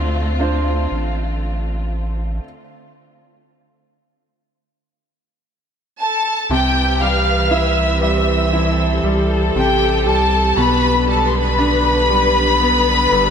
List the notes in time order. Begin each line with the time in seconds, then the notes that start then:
Already playing: D2 D3 A3 C4 D4 F4 C5
0.40 D4 F4 C5
0.92 A1
6.00 A4 A5
6.50 C2 C3 E3 C4 G4 B4 G5
7.01 G3 F5 F6
7.51 E4 E5 E6
8.02 G3 E5 E6
8.53 E4 A4
9.03 C2 G3
9.55 A1 C3 G4 G5
10.06 C2 G3 A4 A5
10.56 B1 B2 D3 B3 B4 B5
11.08 G3 A4 A5
11.28 C6
11.35 B4 B5
11.59 D4
12.10 G3
12.60 B3 A4
13.12 G1 G3